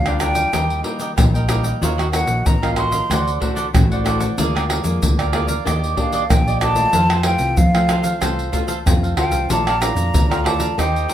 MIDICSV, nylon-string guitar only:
0, 0, Header, 1, 2, 480
1, 0, Start_track
1, 0, Key_signature, -2, "major"
1, 0, Tempo, 640342
1, 1361, Time_signature, 4, 2, 24, 8
1, 8349, End_track
2, 0, Start_track
2, 0, Title_t, "Nylon-string guitar"
2, 0, Program_c, 0, 24
2, 0, Note_on_c, 0, 53, 49
2, 49, Note_on_c, 0, 62, 72
2, 50, Note_on_c, 0, 55, 59
2, 52, Note_on_c, 0, 65, 78
2, 367, Note_off_c, 0, 55, 0
2, 367, Note_off_c, 0, 62, 0
2, 367, Note_off_c, 0, 65, 0
2, 378, Note_off_c, 0, 53, 0
2, 394, Note_on_c, 0, 51, 50
2, 398, Note_on_c, 0, 55, 59
2, 403, Note_on_c, 0, 63, 52
2, 404, Note_on_c, 0, 58, 51
2, 602, Note_off_c, 0, 55, 0
2, 603, Note_off_c, 0, 58, 0
2, 604, Note_off_c, 0, 63, 0
2, 623, Note_on_c, 0, 55, 55
2, 629, Note_on_c, 0, 58, 55
2, 630, Note_on_c, 0, 63, 58
2, 834, Note_off_c, 0, 55, 0
2, 835, Note_off_c, 0, 58, 0
2, 837, Note_off_c, 0, 63, 0
2, 854, Note_off_c, 0, 51, 0
2, 868, Note_on_c, 0, 55, 50
2, 871, Note_on_c, 0, 46, 51
2, 874, Note_on_c, 0, 58, 47
2, 875, Note_on_c, 0, 63, 57
2, 1076, Note_off_c, 0, 55, 0
2, 1079, Note_off_c, 0, 58, 0
2, 1080, Note_off_c, 0, 63, 0
2, 1111, Note_on_c, 0, 55, 59
2, 1111, Note_on_c, 0, 58, 66
2, 1116, Note_on_c, 0, 63, 62
2, 1333, Note_off_c, 0, 46, 0
2, 1336, Note_off_c, 0, 58, 0
2, 1337, Note_off_c, 0, 55, 0
2, 1339, Note_off_c, 0, 63, 0
2, 1358, Note_on_c, 0, 51, 57
2, 1360, Note_on_c, 0, 54, 53
2, 1362, Note_on_c, 0, 58, 48
2, 1365, Note_on_c, 0, 65, 68
2, 1501, Note_off_c, 0, 54, 0
2, 1503, Note_off_c, 0, 58, 0
2, 1504, Note_off_c, 0, 65, 0
2, 1590, Note_on_c, 0, 54, 57
2, 1593, Note_on_c, 0, 58, 56
2, 1816, Note_off_c, 0, 51, 0
2, 1821, Note_off_c, 0, 54, 0
2, 1822, Note_off_c, 0, 58, 0
2, 1965, Note_on_c, 0, 54, 58
2, 1966, Note_on_c, 0, 58, 62
2, 1971, Note_on_c, 0, 65, 65
2, 2285, Note_off_c, 0, 54, 0
2, 2285, Note_off_c, 0, 58, 0
2, 2288, Note_off_c, 0, 65, 0
2, 2320, Note_on_c, 0, 50, 52
2, 2321, Note_on_c, 0, 57, 52
2, 2323, Note_on_c, 0, 60, 49
2, 2328, Note_on_c, 0, 66, 52
2, 2462, Note_off_c, 0, 57, 0
2, 2463, Note_off_c, 0, 60, 0
2, 2466, Note_off_c, 0, 66, 0
2, 2554, Note_on_c, 0, 57, 57
2, 2559, Note_on_c, 0, 66, 56
2, 2560, Note_on_c, 0, 60, 57
2, 2760, Note_off_c, 0, 57, 0
2, 2761, Note_off_c, 0, 60, 0
2, 2762, Note_off_c, 0, 66, 0
2, 2777, Note_off_c, 0, 50, 0
2, 2796, Note_on_c, 0, 45, 52
2, 2799, Note_on_c, 0, 57, 51
2, 2803, Note_on_c, 0, 66, 47
2, 2805, Note_on_c, 0, 60, 57
2, 3002, Note_off_c, 0, 57, 0
2, 3003, Note_off_c, 0, 60, 0
2, 3004, Note_off_c, 0, 66, 0
2, 3028, Note_on_c, 0, 57, 62
2, 3035, Note_on_c, 0, 60, 55
2, 3039, Note_on_c, 0, 66, 62
2, 3190, Note_off_c, 0, 57, 0
2, 3193, Note_off_c, 0, 60, 0
2, 3194, Note_off_c, 0, 66, 0
2, 3256, Note_off_c, 0, 45, 0
2, 3281, Note_on_c, 0, 50, 58
2, 3283, Note_on_c, 0, 56, 58
2, 3285, Note_on_c, 0, 58, 58
2, 3289, Note_on_c, 0, 65, 52
2, 3604, Note_off_c, 0, 56, 0
2, 3604, Note_off_c, 0, 58, 0
2, 3606, Note_off_c, 0, 65, 0
2, 3625, Note_on_c, 0, 56, 56
2, 3631, Note_on_c, 0, 58, 57
2, 3636, Note_on_c, 0, 65, 63
2, 3737, Note_off_c, 0, 50, 0
2, 3759, Note_on_c, 0, 50, 54
2, 3955, Note_off_c, 0, 56, 0
2, 3958, Note_off_c, 0, 58, 0
2, 3960, Note_off_c, 0, 65, 0
2, 3990, Note_on_c, 0, 56, 61
2, 3995, Note_on_c, 0, 58, 57
2, 3996, Note_on_c, 0, 65, 68
2, 4151, Note_off_c, 0, 56, 0
2, 4152, Note_off_c, 0, 58, 0
2, 4153, Note_off_c, 0, 65, 0
2, 4216, Note_off_c, 0, 50, 0
2, 4231, Note_on_c, 0, 51, 55
2, 4236, Note_on_c, 0, 58, 50
2, 4239, Note_on_c, 0, 62, 51
2, 4239, Note_on_c, 0, 67, 64
2, 4439, Note_off_c, 0, 58, 0
2, 4439, Note_off_c, 0, 62, 0
2, 4442, Note_off_c, 0, 67, 0
2, 4469, Note_on_c, 0, 58, 59
2, 4474, Note_on_c, 0, 62, 65
2, 4475, Note_on_c, 0, 67, 57
2, 4677, Note_off_c, 0, 58, 0
2, 4678, Note_off_c, 0, 62, 0
2, 4679, Note_off_c, 0, 67, 0
2, 4693, Note_off_c, 0, 51, 0
2, 4715, Note_on_c, 0, 46, 53
2, 4718, Note_on_c, 0, 58, 47
2, 4720, Note_on_c, 0, 62, 56
2, 4725, Note_on_c, 0, 67, 49
2, 5040, Note_off_c, 0, 58, 0
2, 5042, Note_off_c, 0, 62, 0
2, 5043, Note_off_c, 0, 67, 0
2, 5061, Note_on_c, 0, 57, 65
2, 5066, Note_on_c, 0, 60, 67
2, 5068, Note_on_c, 0, 65, 78
2, 5174, Note_off_c, 0, 46, 0
2, 5198, Note_on_c, 0, 53, 52
2, 5417, Note_off_c, 0, 57, 0
2, 5421, Note_off_c, 0, 60, 0
2, 5426, Note_on_c, 0, 57, 54
2, 5427, Note_off_c, 0, 65, 0
2, 5430, Note_on_c, 0, 60, 55
2, 5436, Note_on_c, 0, 65, 64
2, 5655, Note_off_c, 0, 53, 0
2, 5658, Note_off_c, 0, 57, 0
2, 5660, Note_off_c, 0, 60, 0
2, 5663, Note_off_c, 0, 65, 0
2, 5804, Note_on_c, 0, 57, 65
2, 5808, Note_on_c, 0, 60, 66
2, 5808, Note_on_c, 0, 65, 68
2, 6124, Note_off_c, 0, 57, 0
2, 6125, Note_off_c, 0, 65, 0
2, 6126, Note_off_c, 0, 60, 0
2, 6155, Note_on_c, 0, 53, 48
2, 6158, Note_on_c, 0, 57, 55
2, 6160, Note_on_c, 0, 60, 53
2, 6164, Note_on_c, 0, 65, 61
2, 6360, Note_off_c, 0, 57, 0
2, 6362, Note_off_c, 0, 60, 0
2, 6364, Note_off_c, 0, 65, 0
2, 6391, Note_on_c, 0, 57, 65
2, 6395, Note_on_c, 0, 65, 62
2, 6396, Note_on_c, 0, 60, 63
2, 6537, Note_off_c, 0, 57, 0
2, 6538, Note_off_c, 0, 60, 0
2, 6538, Note_off_c, 0, 65, 0
2, 6614, Note_off_c, 0, 53, 0
2, 6637, Note_on_c, 0, 48, 49
2, 6639, Note_on_c, 0, 57, 49
2, 6644, Note_on_c, 0, 60, 58
2, 6645, Note_on_c, 0, 65, 57
2, 6841, Note_off_c, 0, 57, 0
2, 6842, Note_off_c, 0, 60, 0
2, 6844, Note_off_c, 0, 65, 0
2, 6872, Note_on_c, 0, 57, 59
2, 6875, Note_on_c, 0, 60, 56
2, 6877, Note_on_c, 0, 65, 68
2, 7094, Note_off_c, 0, 48, 0
2, 7096, Note_off_c, 0, 57, 0
2, 7098, Note_off_c, 0, 60, 0
2, 7098, Note_off_c, 0, 65, 0
2, 7115, Note_on_c, 0, 46, 58
2, 7120, Note_on_c, 0, 62, 54
2, 7121, Note_on_c, 0, 57, 53
2, 7124, Note_on_c, 0, 65, 56
2, 7260, Note_off_c, 0, 57, 0
2, 7261, Note_off_c, 0, 62, 0
2, 7263, Note_off_c, 0, 65, 0
2, 7353, Note_on_c, 0, 57, 48
2, 7359, Note_on_c, 0, 65, 50
2, 7360, Note_on_c, 0, 62, 54
2, 7574, Note_off_c, 0, 46, 0
2, 7599, Note_on_c, 0, 41, 50
2, 7679, Note_off_c, 0, 57, 0
2, 7680, Note_off_c, 0, 62, 0
2, 7681, Note_off_c, 0, 65, 0
2, 7722, Note_on_c, 0, 57, 62
2, 7726, Note_on_c, 0, 62, 63
2, 7730, Note_on_c, 0, 65, 67
2, 8043, Note_off_c, 0, 57, 0
2, 8044, Note_off_c, 0, 62, 0
2, 8046, Note_off_c, 0, 65, 0
2, 8055, Note_off_c, 0, 41, 0
2, 8076, Note_on_c, 0, 51, 51
2, 8078, Note_on_c, 0, 58, 50
2, 8079, Note_on_c, 0, 60, 56
2, 8081, Note_on_c, 0, 67, 60
2, 8349, Note_off_c, 0, 51, 0
2, 8349, Note_off_c, 0, 58, 0
2, 8349, Note_off_c, 0, 60, 0
2, 8349, Note_off_c, 0, 67, 0
2, 8349, End_track
0, 0, End_of_file